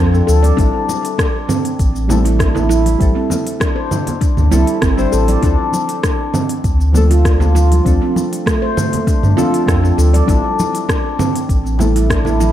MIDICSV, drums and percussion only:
0, 0, Header, 1, 2, 480
1, 0, Start_track
1, 0, Key_signature, -1, "minor"
1, 0, Tempo, 606061
1, 465, Time_signature, 4, 2, 24, 8
1, 9918, End_track
2, 0, Start_track
2, 0, Title_t, "Drums"
2, 115, Note_on_c, 9, 69, 32
2, 194, Note_off_c, 9, 69, 0
2, 228, Note_on_c, 9, 69, 82
2, 307, Note_off_c, 9, 69, 0
2, 349, Note_on_c, 9, 46, 56
2, 349, Note_on_c, 9, 63, 62
2, 355, Note_on_c, 9, 69, 37
2, 428, Note_off_c, 9, 46, 0
2, 428, Note_off_c, 9, 63, 0
2, 434, Note_off_c, 9, 69, 0
2, 462, Note_on_c, 9, 36, 110
2, 463, Note_on_c, 9, 46, 45
2, 469, Note_on_c, 9, 69, 50
2, 541, Note_off_c, 9, 36, 0
2, 543, Note_off_c, 9, 46, 0
2, 548, Note_off_c, 9, 69, 0
2, 706, Note_on_c, 9, 62, 66
2, 708, Note_on_c, 9, 69, 87
2, 712, Note_on_c, 9, 63, 67
2, 785, Note_off_c, 9, 62, 0
2, 787, Note_off_c, 9, 69, 0
2, 791, Note_off_c, 9, 63, 0
2, 830, Note_on_c, 9, 46, 58
2, 835, Note_on_c, 9, 69, 35
2, 909, Note_off_c, 9, 46, 0
2, 914, Note_off_c, 9, 69, 0
2, 942, Note_on_c, 9, 36, 117
2, 943, Note_on_c, 9, 37, 103
2, 943, Note_on_c, 9, 46, 45
2, 948, Note_on_c, 9, 69, 48
2, 1021, Note_off_c, 9, 36, 0
2, 1022, Note_off_c, 9, 37, 0
2, 1022, Note_off_c, 9, 46, 0
2, 1028, Note_off_c, 9, 69, 0
2, 1180, Note_on_c, 9, 64, 76
2, 1183, Note_on_c, 9, 62, 57
2, 1186, Note_on_c, 9, 69, 82
2, 1260, Note_off_c, 9, 64, 0
2, 1262, Note_off_c, 9, 62, 0
2, 1265, Note_off_c, 9, 69, 0
2, 1307, Note_on_c, 9, 46, 52
2, 1313, Note_on_c, 9, 69, 33
2, 1386, Note_off_c, 9, 46, 0
2, 1392, Note_off_c, 9, 69, 0
2, 1421, Note_on_c, 9, 36, 107
2, 1421, Note_on_c, 9, 46, 44
2, 1426, Note_on_c, 9, 69, 48
2, 1500, Note_off_c, 9, 46, 0
2, 1501, Note_off_c, 9, 36, 0
2, 1505, Note_off_c, 9, 69, 0
2, 1551, Note_on_c, 9, 69, 32
2, 1630, Note_off_c, 9, 69, 0
2, 1660, Note_on_c, 9, 64, 99
2, 1665, Note_on_c, 9, 63, 65
2, 1667, Note_on_c, 9, 69, 83
2, 1739, Note_off_c, 9, 64, 0
2, 1744, Note_off_c, 9, 63, 0
2, 1746, Note_off_c, 9, 69, 0
2, 1786, Note_on_c, 9, 46, 51
2, 1792, Note_on_c, 9, 69, 34
2, 1865, Note_off_c, 9, 46, 0
2, 1871, Note_off_c, 9, 69, 0
2, 1900, Note_on_c, 9, 36, 112
2, 1901, Note_on_c, 9, 37, 94
2, 1901, Note_on_c, 9, 46, 41
2, 1907, Note_on_c, 9, 69, 46
2, 1979, Note_off_c, 9, 36, 0
2, 1980, Note_off_c, 9, 37, 0
2, 1980, Note_off_c, 9, 46, 0
2, 1986, Note_off_c, 9, 69, 0
2, 2024, Note_on_c, 9, 64, 102
2, 2033, Note_on_c, 9, 69, 34
2, 2103, Note_off_c, 9, 64, 0
2, 2113, Note_off_c, 9, 69, 0
2, 2138, Note_on_c, 9, 63, 65
2, 2147, Note_on_c, 9, 69, 80
2, 2217, Note_off_c, 9, 63, 0
2, 2226, Note_off_c, 9, 69, 0
2, 2264, Note_on_c, 9, 63, 69
2, 2266, Note_on_c, 9, 46, 54
2, 2271, Note_on_c, 9, 69, 35
2, 2344, Note_off_c, 9, 63, 0
2, 2345, Note_off_c, 9, 46, 0
2, 2350, Note_off_c, 9, 69, 0
2, 2380, Note_on_c, 9, 36, 109
2, 2381, Note_on_c, 9, 46, 45
2, 2386, Note_on_c, 9, 69, 52
2, 2459, Note_off_c, 9, 36, 0
2, 2460, Note_off_c, 9, 46, 0
2, 2465, Note_off_c, 9, 69, 0
2, 2614, Note_on_c, 9, 64, 90
2, 2623, Note_on_c, 9, 63, 59
2, 2626, Note_on_c, 9, 69, 86
2, 2627, Note_on_c, 9, 62, 68
2, 2694, Note_off_c, 9, 64, 0
2, 2702, Note_off_c, 9, 63, 0
2, 2705, Note_off_c, 9, 69, 0
2, 2706, Note_off_c, 9, 62, 0
2, 2745, Note_on_c, 9, 46, 55
2, 2750, Note_on_c, 9, 69, 34
2, 2824, Note_off_c, 9, 46, 0
2, 2830, Note_off_c, 9, 69, 0
2, 2859, Note_on_c, 9, 37, 103
2, 2859, Note_on_c, 9, 46, 43
2, 2860, Note_on_c, 9, 36, 108
2, 2864, Note_on_c, 9, 69, 50
2, 2938, Note_off_c, 9, 37, 0
2, 2938, Note_off_c, 9, 46, 0
2, 2939, Note_off_c, 9, 36, 0
2, 2944, Note_off_c, 9, 69, 0
2, 3098, Note_on_c, 9, 64, 74
2, 3101, Note_on_c, 9, 63, 38
2, 3104, Note_on_c, 9, 69, 87
2, 3109, Note_on_c, 9, 62, 58
2, 3178, Note_off_c, 9, 64, 0
2, 3180, Note_off_c, 9, 63, 0
2, 3183, Note_off_c, 9, 69, 0
2, 3189, Note_off_c, 9, 62, 0
2, 3224, Note_on_c, 9, 46, 56
2, 3229, Note_on_c, 9, 64, 82
2, 3230, Note_on_c, 9, 69, 36
2, 3303, Note_off_c, 9, 46, 0
2, 3308, Note_off_c, 9, 64, 0
2, 3309, Note_off_c, 9, 69, 0
2, 3337, Note_on_c, 9, 46, 43
2, 3340, Note_on_c, 9, 36, 112
2, 3343, Note_on_c, 9, 69, 48
2, 3417, Note_off_c, 9, 46, 0
2, 3419, Note_off_c, 9, 36, 0
2, 3422, Note_off_c, 9, 69, 0
2, 3463, Note_on_c, 9, 64, 59
2, 3468, Note_on_c, 9, 69, 33
2, 3542, Note_off_c, 9, 64, 0
2, 3547, Note_off_c, 9, 69, 0
2, 3581, Note_on_c, 9, 69, 85
2, 3584, Note_on_c, 9, 64, 86
2, 3587, Note_on_c, 9, 62, 33
2, 3660, Note_off_c, 9, 69, 0
2, 3664, Note_off_c, 9, 64, 0
2, 3666, Note_off_c, 9, 62, 0
2, 3702, Note_on_c, 9, 46, 51
2, 3707, Note_on_c, 9, 69, 32
2, 3781, Note_off_c, 9, 46, 0
2, 3786, Note_off_c, 9, 69, 0
2, 3816, Note_on_c, 9, 37, 98
2, 3816, Note_on_c, 9, 46, 40
2, 3820, Note_on_c, 9, 36, 115
2, 3822, Note_on_c, 9, 69, 47
2, 3896, Note_off_c, 9, 37, 0
2, 3896, Note_off_c, 9, 46, 0
2, 3899, Note_off_c, 9, 36, 0
2, 3901, Note_off_c, 9, 69, 0
2, 3948, Note_on_c, 9, 69, 35
2, 4027, Note_off_c, 9, 69, 0
2, 4062, Note_on_c, 9, 69, 83
2, 4141, Note_off_c, 9, 69, 0
2, 4183, Note_on_c, 9, 46, 53
2, 4187, Note_on_c, 9, 63, 60
2, 4188, Note_on_c, 9, 69, 35
2, 4262, Note_off_c, 9, 46, 0
2, 4267, Note_off_c, 9, 63, 0
2, 4268, Note_off_c, 9, 69, 0
2, 4298, Note_on_c, 9, 46, 49
2, 4300, Note_on_c, 9, 36, 112
2, 4303, Note_on_c, 9, 69, 47
2, 4377, Note_off_c, 9, 46, 0
2, 4379, Note_off_c, 9, 36, 0
2, 4382, Note_off_c, 9, 69, 0
2, 4535, Note_on_c, 9, 63, 59
2, 4541, Note_on_c, 9, 62, 61
2, 4545, Note_on_c, 9, 69, 85
2, 4614, Note_off_c, 9, 63, 0
2, 4621, Note_off_c, 9, 62, 0
2, 4624, Note_off_c, 9, 69, 0
2, 4664, Note_on_c, 9, 46, 53
2, 4669, Note_on_c, 9, 69, 34
2, 4743, Note_off_c, 9, 46, 0
2, 4749, Note_off_c, 9, 69, 0
2, 4780, Note_on_c, 9, 36, 105
2, 4780, Note_on_c, 9, 37, 98
2, 4780, Note_on_c, 9, 46, 42
2, 4785, Note_on_c, 9, 69, 48
2, 4859, Note_off_c, 9, 36, 0
2, 4859, Note_off_c, 9, 37, 0
2, 4859, Note_off_c, 9, 46, 0
2, 4864, Note_off_c, 9, 69, 0
2, 5019, Note_on_c, 9, 64, 82
2, 5025, Note_on_c, 9, 69, 79
2, 5028, Note_on_c, 9, 62, 59
2, 5099, Note_off_c, 9, 64, 0
2, 5104, Note_off_c, 9, 69, 0
2, 5107, Note_off_c, 9, 62, 0
2, 5143, Note_on_c, 9, 46, 52
2, 5149, Note_on_c, 9, 69, 33
2, 5222, Note_off_c, 9, 46, 0
2, 5228, Note_off_c, 9, 69, 0
2, 5260, Note_on_c, 9, 46, 42
2, 5261, Note_on_c, 9, 36, 108
2, 5266, Note_on_c, 9, 69, 46
2, 5339, Note_off_c, 9, 46, 0
2, 5340, Note_off_c, 9, 36, 0
2, 5345, Note_off_c, 9, 69, 0
2, 5392, Note_on_c, 9, 69, 29
2, 5471, Note_off_c, 9, 69, 0
2, 5498, Note_on_c, 9, 64, 84
2, 5500, Note_on_c, 9, 63, 61
2, 5507, Note_on_c, 9, 69, 82
2, 5577, Note_off_c, 9, 64, 0
2, 5579, Note_off_c, 9, 63, 0
2, 5586, Note_off_c, 9, 69, 0
2, 5629, Note_on_c, 9, 46, 52
2, 5635, Note_on_c, 9, 69, 31
2, 5708, Note_off_c, 9, 46, 0
2, 5714, Note_off_c, 9, 69, 0
2, 5742, Note_on_c, 9, 36, 108
2, 5743, Note_on_c, 9, 37, 94
2, 5743, Note_on_c, 9, 46, 42
2, 5749, Note_on_c, 9, 69, 43
2, 5821, Note_off_c, 9, 36, 0
2, 5822, Note_off_c, 9, 37, 0
2, 5822, Note_off_c, 9, 46, 0
2, 5828, Note_off_c, 9, 69, 0
2, 5866, Note_on_c, 9, 64, 91
2, 5875, Note_on_c, 9, 69, 33
2, 5945, Note_off_c, 9, 64, 0
2, 5954, Note_off_c, 9, 69, 0
2, 5986, Note_on_c, 9, 63, 60
2, 5990, Note_on_c, 9, 69, 80
2, 6065, Note_off_c, 9, 63, 0
2, 6069, Note_off_c, 9, 69, 0
2, 6112, Note_on_c, 9, 46, 54
2, 6115, Note_on_c, 9, 63, 68
2, 6118, Note_on_c, 9, 69, 34
2, 6191, Note_off_c, 9, 46, 0
2, 6194, Note_off_c, 9, 63, 0
2, 6197, Note_off_c, 9, 69, 0
2, 6223, Note_on_c, 9, 36, 103
2, 6227, Note_on_c, 9, 46, 47
2, 6233, Note_on_c, 9, 69, 44
2, 6303, Note_off_c, 9, 36, 0
2, 6306, Note_off_c, 9, 46, 0
2, 6312, Note_off_c, 9, 69, 0
2, 6464, Note_on_c, 9, 62, 62
2, 6464, Note_on_c, 9, 63, 64
2, 6474, Note_on_c, 9, 69, 78
2, 6543, Note_off_c, 9, 62, 0
2, 6543, Note_off_c, 9, 63, 0
2, 6553, Note_off_c, 9, 69, 0
2, 6595, Note_on_c, 9, 46, 56
2, 6601, Note_on_c, 9, 69, 32
2, 6674, Note_off_c, 9, 46, 0
2, 6680, Note_off_c, 9, 69, 0
2, 6704, Note_on_c, 9, 36, 104
2, 6709, Note_on_c, 9, 37, 101
2, 6709, Note_on_c, 9, 46, 44
2, 6715, Note_on_c, 9, 69, 45
2, 6784, Note_off_c, 9, 36, 0
2, 6788, Note_off_c, 9, 37, 0
2, 6788, Note_off_c, 9, 46, 0
2, 6794, Note_off_c, 9, 69, 0
2, 6946, Note_on_c, 9, 62, 60
2, 6947, Note_on_c, 9, 63, 36
2, 6948, Note_on_c, 9, 64, 83
2, 6954, Note_on_c, 9, 69, 75
2, 7025, Note_off_c, 9, 62, 0
2, 7027, Note_off_c, 9, 63, 0
2, 7027, Note_off_c, 9, 64, 0
2, 7033, Note_off_c, 9, 69, 0
2, 7073, Note_on_c, 9, 46, 53
2, 7079, Note_on_c, 9, 64, 77
2, 7079, Note_on_c, 9, 69, 33
2, 7152, Note_off_c, 9, 46, 0
2, 7158, Note_off_c, 9, 64, 0
2, 7158, Note_off_c, 9, 69, 0
2, 7184, Note_on_c, 9, 36, 104
2, 7187, Note_on_c, 9, 46, 45
2, 7193, Note_on_c, 9, 69, 46
2, 7263, Note_off_c, 9, 36, 0
2, 7266, Note_off_c, 9, 46, 0
2, 7272, Note_off_c, 9, 69, 0
2, 7312, Note_on_c, 9, 64, 61
2, 7318, Note_on_c, 9, 69, 30
2, 7392, Note_off_c, 9, 64, 0
2, 7397, Note_off_c, 9, 69, 0
2, 7427, Note_on_c, 9, 62, 37
2, 7432, Note_on_c, 9, 64, 87
2, 7434, Note_on_c, 9, 69, 76
2, 7506, Note_off_c, 9, 62, 0
2, 7511, Note_off_c, 9, 64, 0
2, 7513, Note_off_c, 9, 69, 0
2, 7556, Note_on_c, 9, 46, 55
2, 7561, Note_on_c, 9, 69, 30
2, 7635, Note_off_c, 9, 46, 0
2, 7640, Note_off_c, 9, 69, 0
2, 7665, Note_on_c, 9, 36, 104
2, 7670, Note_on_c, 9, 37, 92
2, 7670, Note_on_c, 9, 46, 45
2, 7675, Note_on_c, 9, 69, 42
2, 7744, Note_off_c, 9, 36, 0
2, 7749, Note_off_c, 9, 37, 0
2, 7749, Note_off_c, 9, 46, 0
2, 7754, Note_off_c, 9, 69, 0
2, 7801, Note_on_c, 9, 69, 31
2, 7880, Note_off_c, 9, 69, 0
2, 7913, Note_on_c, 9, 69, 76
2, 7992, Note_off_c, 9, 69, 0
2, 8033, Note_on_c, 9, 46, 54
2, 8039, Note_on_c, 9, 69, 34
2, 8042, Note_on_c, 9, 63, 59
2, 8112, Note_off_c, 9, 46, 0
2, 8118, Note_off_c, 9, 69, 0
2, 8121, Note_off_c, 9, 63, 0
2, 8144, Note_on_c, 9, 36, 104
2, 8148, Note_on_c, 9, 46, 52
2, 8154, Note_on_c, 9, 69, 46
2, 8223, Note_off_c, 9, 36, 0
2, 8227, Note_off_c, 9, 46, 0
2, 8233, Note_off_c, 9, 69, 0
2, 8391, Note_on_c, 9, 69, 82
2, 8393, Note_on_c, 9, 63, 58
2, 8394, Note_on_c, 9, 62, 74
2, 8470, Note_off_c, 9, 69, 0
2, 8472, Note_off_c, 9, 63, 0
2, 8473, Note_off_c, 9, 62, 0
2, 8512, Note_on_c, 9, 46, 56
2, 8517, Note_on_c, 9, 69, 32
2, 8591, Note_off_c, 9, 46, 0
2, 8596, Note_off_c, 9, 69, 0
2, 8624, Note_on_c, 9, 36, 97
2, 8628, Note_on_c, 9, 37, 101
2, 8628, Note_on_c, 9, 46, 46
2, 8634, Note_on_c, 9, 69, 44
2, 8703, Note_off_c, 9, 36, 0
2, 8707, Note_off_c, 9, 37, 0
2, 8707, Note_off_c, 9, 46, 0
2, 8713, Note_off_c, 9, 69, 0
2, 8865, Note_on_c, 9, 62, 72
2, 8865, Note_on_c, 9, 64, 88
2, 8871, Note_on_c, 9, 69, 74
2, 8945, Note_off_c, 9, 62, 0
2, 8945, Note_off_c, 9, 64, 0
2, 8950, Note_off_c, 9, 69, 0
2, 8993, Note_on_c, 9, 46, 57
2, 8999, Note_on_c, 9, 69, 33
2, 9072, Note_off_c, 9, 46, 0
2, 9078, Note_off_c, 9, 69, 0
2, 9102, Note_on_c, 9, 36, 102
2, 9105, Note_on_c, 9, 46, 46
2, 9111, Note_on_c, 9, 69, 41
2, 9181, Note_off_c, 9, 36, 0
2, 9185, Note_off_c, 9, 46, 0
2, 9190, Note_off_c, 9, 69, 0
2, 9238, Note_on_c, 9, 69, 29
2, 9317, Note_off_c, 9, 69, 0
2, 9337, Note_on_c, 9, 64, 92
2, 9347, Note_on_c, 9, 63, 64
2, 9351, Note_on_c, 9, 69, 74
2, 9416, Note_off_c, 9, 64, 0
2, 9426, Note_off_c, 9, 63, 0
2, 9431, Note_off_c, 9, 69, 0
2, 9472, Note_on_c, 9, 46, 52
2, 9477, Note_on_c, 9, 69, 32
2, 9551, Note_off_c, 9, 46, 0
2, 9556, Note_off_c, 9, 69, 0
2, 9582, Note_on_c, 9, 36, 94
2, 9586, Note_on_c, 9, 37, 101
2, 9586, Note_on_c, 9, 46, 45
2, 9592, Note_on_c, 9, 69, 40
2, 9661, Note_off_c, 9, 36, 0
2, 9665, Note_off_c, 9, 37, 0
2, 9665, Note_off_c, 9, 46, 0
2, 9671, Note_off_c, 9, 69, 0
2, 9700, Note_on_c, 9, 64, 95
2, 9717, Note_on_c, 9, 69, 31
2, 9779, Note_off_c, 9, 64, 0
2, 9796, Note_off_c, 9, 69, 0
2, 9826, Note_on_c, 9, 69, 80
2, 9831, Note_on_c, 9, 63, 61
2, 9906, Note_off_c, 9, 69, 0
2, 9910, Note_off_c, 9, 63, 0
2, 9918, End_track
0, 0, End_of_file